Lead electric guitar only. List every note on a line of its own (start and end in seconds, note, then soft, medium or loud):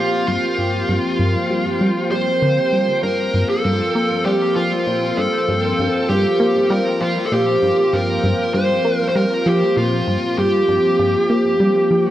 0.00 0.27 F4 medium
0.28 2.11 F4 medium
2.11 3.03 C5 loud
3.03 3.49 A#4 medium
3.49 4.28 A4 medium
4.26 4.56 G4 medium
4.56 5.19 F4 medium
5.17 6.12 A4 loud
6.09 6.72 G4 medium
6.70 7.02 A#4 loud
7.01 7.25 F4 medium
7.25 7.32 A4 medium
7.32 7.95 G4 medium
7.93 8.54 A#4 medium
8.54 8.97 C5 medium
8.97 9.08 A#4 medium
9.09 9.16 C5 medium
9.16 9.47 A#4 medium
9.47 9.77 G4 medium
9.77 10.38 F4 medium
10.39 12.11 G4 medium